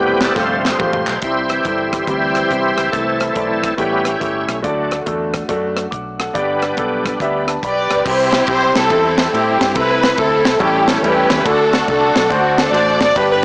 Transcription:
Already playing: E1 A2 C3 G3 A3 B3 E4 G4 C5
0.21 kick, snare, clap, closed hi-hat
0.25 A4
0.35 G1 G2 C3 F3 A3 F4 G4 C5, kick, snare
0.39 A3 C5
0.65 snare, clap
0.79 A1 A3 F4 G4 C5, kick, mid tom
0.93 floor tom
1.07 B1, clap
1.22 C2 C3 E3 G3 C4 E4 G4 C5, kick, closed hi-hat
1.49 E3 G3 C4, cross-stick, closed hi-hat
1.65 G1 G3 C4 E4 A4, kick, closed hi-hat
1.93 kick, cross-stick, closed hi-hat
2.07 D2 G3 C4 E4 G4 C5, kick, closed hi-hat
2.35 cross-stick, closed hi-hat
2.50 C2 G3 C4 E4 G4, kick, closed hi-hat
2.77 C#2, cross-stick, closed hi-hat
2.91 C2 C3 E3 A3 C4 E4 A4, kick, closed hi-hat
2.96 C5
3.20 cross-stick, closed hi-hat
3.35 B1 A3 C4 E4 D5, kick, closed hi-hat
3.64 kick, cross-stick, closed hi-hat
3.77 A1 A2 G3 A3 B3 C#4 E4 G4 C#5, kick, closed hi-hat
4.05 cross-stick, closed hi-hat
4.20 G1 A3 E4 G4 C#5, kick, closed hi-hat
4.49 B1, cross-stick, closed hi-hat
4.62 D2 D3 F#3 A3 D4 F#4 D5, kick, closed hi-hat
4.91 cross-stick, closed hi-hat
5.06 E2 A3 D4 F#4 A4, kick, closed hi-hat
5.34 kick, cross-stick, closed hi-hat
5.49 F#2 A3 D4 F#4 A4, kick, closed hi-hat
5.77 cross-stick, closed hi-hat
5.91 B1 F#5 D6, kick, closed hi-hat
6.19 A4 F#5, cross-stick, closed hi-hat
6.33 G1 G2 G3 B3 D4 G4 D5, kick, closed hi-hat
6.62 cross-stick, closed hi-hat
6.77 B1 B3 D4 G4 A4, kick, closed hi-hat
7.06 kick, cross-stick, closed hi-hat
7.20 D2 G3 B3 D4 G4 E5, kick, closed hi-hat
7.48 A5, cross-stick, closed hi-hat
7.63 B1 G4 B4 D5 B5, kick, closed hi-hat
7.91 C#2 B4 G5, cross-stick, closed hi-hat
8.05 C2 C3 G3 C4 E4 G4 C5, kick, crash
8.32 snare, ride
8.47 B1 C4 E4 G4 C5, kick, ride
8.75 C2 C4 E4 A4, snare, ride
8.90 E2 C4 E4 A4, kick, ride
9.18 snare, ride
9.33 A2 C4 E4 G4 A4, ride
9.61 G2, kick, snare, ride
9.75 C2 C3 A3 C4 E4 A4 B4, kick, ride
10.03 snare, ride
10.17 D2 C4 E4 A4, kick, ride
10.45 C2, snare, ride
10.59 A1 A2 E3 G3 A3 C#4 E4 G4 A4, kick, ride
10.88 A4, snare, ride
11.02 E2 G3 A3 C#4 E4 G4 A4 B4, ride
11.30 D#2, kick, snare, ride
11.45 D2 D3 A3 D4 E4 F#4 A4, kick, ride
11.51 F#4
11.73 snare, ride
11.87 C2 D4 F#4 A4, kick, ride
12.16 B1, snare, ride
12.30 D2 A3 D4 F#4 C5, kick, ride
12.58 A4, snare, ride
12.71 A1 D4 F#4 C5 D5, ride
13.01 G#1 D5, kick, snare, ride
13.15 G1 G2 B3 D4 G4 B4, kick, ride
13.31 D4 G4 B4

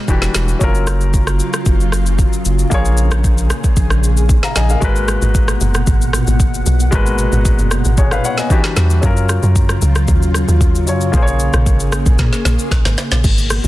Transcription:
Already playing: G#3 F#4 F#5
0.08 E1 D3 E3 G3 D4 F#4 G4, kick, shaker
0.22 snare, shaker
0.34 E1, snare, shaker
0.48 shaker
0.59 F#1 C#3 F#3 C#4 F4, kick, shaker
0.64 A#4
0.75 shaker
0.87 cross-stick, shaker
1.01 shaker
1.14 kick, shaker
1.27 cross-stick, shaker
1.40 shaker
1.53 cross-stick, shaker
1.66 F#1, kick, shaker
1.80 shaker
1.92 cross-stick, shaker
2.06 shaker
2.19 kick, shaker
2.33 shaker
2.45 F#1, shaker
2.59 shaker
2.70 A#1 A#2 A#3 F4 G#4, kick, shaker
2.74 C#5
2.85 shaker
2.97 shaker
3.11 cross-stick, shaker
3.24 kick, shaker
3.38 shaker
3.50 cross-stick, shaker
3.64 kick, shaker
3.76 A#1, kick, shaker
3.90 cross-stick, shaker
4.04 shaker
4.17 shaker
4.29 kick, shaker
4.43 F5 A#5, snare, shaker
4.56 A#1 D#5 G#5, snare, shaker
4.69 A#4 F5, shaker
4.80 G#1 B2 G#3 F#4 A#4 F#5, kick, shaker
4.85 B4
4.96 shaker
5.08 cross-stick, shaker
5.22 G#1, shaker
5.35 kick, shaker
5.48 cross-stick, shaker
5.61 F#1, shaker
5.75 cross-stick, shaker
5.87 G#1, kick, shaker
6.02 shaker
6.13 cross-stick, shaker
6.27 G#1, shaker
6.40 kick, shaker
6.54 shaker
6.66 B1, shaker
6.80 shaker
6.91 G#1 G#3 F#4 A#4, kick, shaker
6.95 B4
7.06 shaker
7.18 shaker
7.32 G#1, shaker
7.45 kick, shaker
7.59 F#1, shaker
7.71 cross-stick, shaker
7.85 G#1, shaker
7.97 G#4 C#5, kick, shaker
8.11 B4 F5, cross-stick, shaker
8.25 C#5 F#5, shaker
8.38 D#5 G#5, snare, shaker
8.50 D3 E3 G3 D4 F#4 G4, kick, shaker
8.64 snare, shaker
8.77 E2, snare, shaker
8.90 shaker
9.01 F#2 C#3 F#3 C#4 F4, kick, shaker
9.05 A#4
9.17 shaker
9.29 cross-stick, shaker
9.43 F#2, shaker
9.56 kick, shaker
9.69 cross-stick, shaker
9.82 C#2, shaker
9.95 cross-stick, shaker
10.08 D#2, kick, shaker
10.23 shaker
10.34 cross-stick, shaker
10.48 D#2, shaker
10.61 kick, shaker
10.75 shaker
10.87 F#2 F#3 C#4 F4 C#5, shaker
11.01 shaker
11.12 A#1 A#3 F4 G#4, kick, shaker
11.16 C5
11.22 C#5
11.27 shaker
11.40 shaker
11.53 A#1, cross-stick, shaker
11.66 kick, shaker
11.80 G#1, shaker
11.92 cross-stick, shaker
12.06 A#1, kick, shaker
12.19 A#2, kick, snare, shaker
12.33 snare, shaker
12.45 A#1, snare, shaker
12.59 shaker
12.71 A#1, kick, snare, shaker
12.85 G#1, snare, shaker
12.98 snare, shaker
13.11 A#1, snare, shaker
13.24 G#1 B2 A#3 F#4, kick, crash, shaker
13.38 shaker
13.50 cross-stick, open hi-hat, shaker
13.64 G#1, shaker

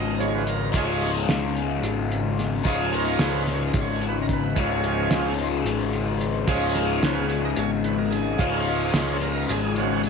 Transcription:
Already playing: G#1 C#2 G#2 C#3 G#3 F4 D#5
0.18 F3 G#3 C#4 C#5, closed hi-hat
0.35 B4
0.47 A#4, closed hi-hat
0.72 C#1 C#2 G#2 C#3 G#3 F4, kick, closed hi-hat
0.76 F3 G#3 C#4 G#4
1.01 closed hi-hat
1.29 C#2, snare, closed hi-hat
1.57 closed hi-hat
1.83 G#1, closed hi-hat
2.11 closed hi-hat
2.39 snare, closed hi-hat
2.64 C#1 C#2 G#2 C#3 F3 G#3 C#4 F4, kick, closed hi-hat
2.68 G#4
2.92 A#4, closed hi-hat
3.19 C#2, snare, closed hi-hat
3.24 B4
3.47 snare, closed hi-hat
3.54 C#5
3.67 D#5
3.73 G#1, kick, closed hi-hat
3.81 C#5
4.01 closed hi-hat
4.08 B4
4.22 A#4
4.29 kick, closed hi-hat
4.33 B4
4.55 C#1 C#2 G#2 C#3 F3 G#3 C#4 F4, kick, closed hi-hat
4.59 C#5
4.84 closed hi-hat
5.11 C#2, snare, closed hi-hat
5.39 closed hi-hat
5.65 G#1, closed hi-hat
5.93 closed hi-hat
6.20 closed hi-hat
6.47 C#1 C#2 G#2 C#3 F3 G#3 C#4 F4 G#4, kick, closed hi-hat
6.74 A#4, snare, closed hi-hat
7.02 C#2 B4, snare, closed hi-hat
7.29 C#5, closed hi-hat
7.45 D#5
7.56 G#1 C#5, closed hi-hat
7.84 B4, closed hi-hat
7.98 A#4
8.10 G#4, closed hi-hat
8.38 C#1 C#2 G#2 C#3 F3 G#3 C#4 F4, kick, closed hi-hat
8.67 closed hi-hat
8.94 C#2, snare, closed hi-hat
9.21 A#4, closed hi-hat
9.49 G#1 G#4, closed hi-hat
9.76 F3 G#3 C#4, closed hi-hat
9.80 F#4
10.03 closed hi-hat

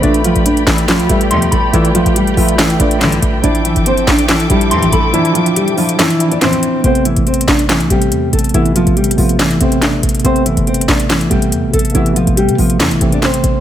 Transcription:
Already playing: D5 B5
0.02 A1 A3 D4 F4 G4 B4 D5 G5, closed hi-hat
0.14 closed hi-hat
0.24 F3 F4, closed hi-hat
0.36 A1, closed hi-hat
0.46 D4 D5, closed hi-hat
0.57 closed hi-hat
0.67 A1 E3 E4, snare, clap
0.78 closed hi-hat
0.88 F3 F4, snare, clap, closed hi-hat
1.00 C2, closed hi-hat
1.09 A1 G3 A3 F4 G4 B4 E5, closed hi-hat
1.21 closed hi-hat
1.31 D2 E2 B2 F3 C6, closed hi-hat
1.42 closed hi-hat
1.51 A1 A3 A4 B5, closed hi-hat
1.73 A1 E3 A3 E4 F4 B4 D5, closed hi-hat
1.85 closed hi-hat
1.94 F3 F4, closed hi-hat
2.06 A1, closed hi-hat
2.16 G3 G4, closed hi-hat
2.27 closed hi-hat
2.36 A1 F3 A3 F4 B4 E5, open hi-hat
2.48 closed hi-hat
2.58 E3 E4, snare, clap, closed hi-hat
2.70 closed hi-hat
2.79 A1 A3 D4 F4 B4 D5, closed hi-hat
2.91 closed hi-hat
3.01 B1 G2 D3 E3 E4, snare, clap, closed hi-hat
3.12 closed hi-hat
3.22 A1, closed hi-hat
3.42 A1 F3 D4 E4 A4 D5 E5 D6, closed hi-hat
3.55 closed hi-hat
3.65 E3 E4, closed hi-hat
3.76 G1, closed hi-hat
3.86 C4 C5, closed hi-hat
3.97 closed hi-hat
4.07 A1 D4 D5, snare, clap
4.19 closed hi-hat
4.29 E3 E4, snare, clap, closed hi-hat
4.40 closed hi-hat
4.50 A1 F3 G3 D4 E4 G4, closed hi-hat
4.61 closed hi-hat
4.71 A1 E2 F2 E3 C6, closed hi-hat
4.83 A1, closed hi-hat
4.93 A1 A3 A4 B5, closed hi-hat
5.13 E3 F3 D4 E4, closed hi-hat
5.25 closed hi-hat
5.35 F3 F4, closed hi-hat
5.46 closed hi-hat
5.56 G3 G4, closed hi-hat
5.68 closed hi-hat
5.77 F3 D4 E4 F4, open hi-hat
5.89 closed hi-hat
5.99 E3 E4, snare, clap, closed hi-hat
6.10 closed hi-hat
6.19 F3 D4 E4, closed hi-hat
6.31 D4 D5, closed hi-hat
6.41 A1 F2 E3 C4 C5, snare, clap, closed hi-hat
6.53 closed hi-hat
6.63 closed hi-hat
6.84 A1 C3 A3 B3 C4 C5, closed hi-hat
6.95 closed hi-hat
7.05 E3 E4, closed hi-hat
7.16 A1, closed hi-hat
7.27 C4 C5, closed hi-hat
7.34 closed hi-hat
7.41 closed hi-hat
7.48 A1 D4 D5, snare, clap
7.59 closed hi-hat
7.69 E3 E4, snare, clap, closed hi-hat
7.80 C2, closed hi-hat
7.90 A1 C3 G3 A3 C4 G4, closed hi-hat
8.02 closed hi-hat
8.12 E2, closed hi-hat
8.33 A1 A3 A4, closed hi-hat
8.39 closed hi-hat
8.44 closed hi-hat
8.49 closed hi-hat
8.54 A1 C3 E3 A3 B3 E4, closed hi-hat
8.65 closed hi-hat
8.76 F3 F4, closed hi-hat
8.87 A1, closed hi-hat
8.97 G3 G4, closed hi-hat
9.04 closed hi-hat
9.11 closed hi-hat
9.17 A1 C3 F3 A3 B3 F4, open hi-hat
9.29 closed hi-hat
9.39 E3 E4, snare, clap, closed hi-hat
9.51 closed hi-hat
9.60 A1 C3 A3 B3 C4 C5, closed hi-hat
9.72 closed hi-hat
9.82 D4 D5, snare, clap, closed hi-hat
10.03 A1, closed hi-hat
10.09 closed hi-hat
10.15 closed hi-hat
10.20 C3, closed hi-hat
10.24 A1 A3 B3 C4 C5, closed hi-hat
10.36 closed hi-hat
10.46 E3 E4, closed hi-hat
10.57 G1, closed hi-hat
10.67 C4 C5, closed hi-hat
10.74 closed hi-hat
10.81 closed hi-hat
10.88 A1 D4 D5, snare, clap
11.00 closed hi-hat
11.09 E3 E4, snare, clap, closed hi-hat
11.21 closed hi-hat
11.29 A1 C3 G3 A3 B3 G4, closed hi-hat
11.42 closed hi-hat
11.52 E2, closed hi-hat
11.64 A1
11.73 A1 A3 A4, closed hi-hat
11.79 closed hi-hat
11.85 closed hi-hat
11.90 closed hi-hat
11.94 A1 C3 E3 A3 B3 E4, closed hi-hat
12.06 closed hi-hat
12.16 F3 F4, closed hi-hat
12.27 A1, closed hi-hat
12.37 G3 G4, closed hi-hat
12.49 C3, closed hi-hat
12.58 A1 C3 F3 A3 B3 F4, open hi-hat
12.70 closed hi-hat
12.80 E2 E3 E4, snare, clap, closed hi-hat
12.91 A1, closed hi-hat
13.00 A1 C3 A3 C4, closed hi-hat
13.12 D4 D5, closed hi-hat
13.22 C4 C5, snare, clap, closed hi-hat
13.34 closed hi-hat
13.44 A1, closed hi-hat

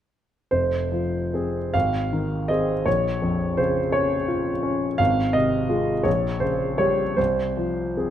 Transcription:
0.51 F1 C5
0.92 F3
1.34 C4 G#4
1.74 G#1 F5
2.13 D#3
2.48 C4 G#4 D#5
2.86 A#1 C#5
3.22 F2
3.57 C#3 C5
3.92 C#4 C#5
4.28 F4
4.63 C#4
4.98 G#1 F5
5.33 C3 D#5
5.69 G#3 F4
6.03 A#1 C#5
6.40 C#3 C5
6.78 G3 G4 C#5
7.17 C2 C5
7.57 F3
7.97 C4 G#4

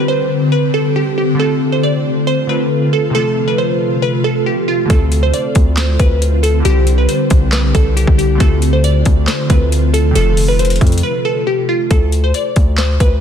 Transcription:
Already playing: D3 G3 C4 G4 C5
0.08 C5
0.52 B4
0.74 A4
0.96 G4
1.18 G4
1.35 D3 A3
1.39 C4 F4 A4
1.44 A4
1.72 C5
1.83 D5
2.27 C5
2.47 D3 A3 C4 F4 B4
2.52 A4
2.93 A4
3.10 C3 F3
3.15 C3 A3 F4 A4
3.20 A4
3.48 B4
3.58 C5
4.02 B4
4.24 A4
4.46 G4
4.68 F4
4.85 D3 A3
4.90 D2 D3 C4 F4 A4, kick, closed hi-hat
4.95 A4
5.12 closed hi-hat
5.23 C5
5.34 D5, closed hi-hat
5.55 D2, kick, closed hi-hat
5.77 C5, snare, clap, closed hi-hat
5.99 D2 B4, kick, closed hi-hat
6.22 closed hi-hat
6.43 A4, closed hi-hat
6.60 D3 G3
6.65 C2 C4 G4, closed hi-hat
6.70 C5
6.87 closed hi-hat
6.98 B4
7.09 C5, closed hi-hat
7.30 C2, kick, closed hi-hat
7.53 B4, snare, clap, closed hi-hat
7.75 C2 A4, kick, closed hi-hat
7.97 G4, closed hi-hat
8.07 C2, kick
8.18 G4, closed hi-hat
8.35 D3 A3
8.40 D2 C4 F4 A4, kick, closed hi-hat
8.45 A4
8.62 closed hi-hat
8.73 C5
8.84 D5, closed hi-hat
9.05 D2, kick, closed hi-hat
9.28 C5, snare, clap, closed hi-hat
9.47 D2 D3 A3 C4 F4 B4, kick, closed hi-hat
9.52 A4
9.72 closed hi-hat
9.94 A4, closed hi-hat
10.11 C3 F3
10.15 F1 C3 A3 F4 A4, closed hi-hat
10.21 A4
10.37 open hi-hat
10.48 B4
10.59 C5, closed hi-hat
10.65 closed hi-hat
10.70 closed hi-hat
10.76 closed hi-hat
10.81 F2, kick, closed hi-hat
10.87 closed hi-hat
10.92 closed hi-hat
10.98 closed hi-hat
11.03 B4
11.25 A4
11.47 G4
11.69 F4
11.91 D2 A4, kick, closed hi-hat
12.12 closed hi-hat
12.24 C5
12.34 D5, closed hi-hat
12.56 D2, kick, closed hi-hat
12.78 C5, snare, clap, closed hi-hat
13.00 D2 B4, kick, closed hi-hat

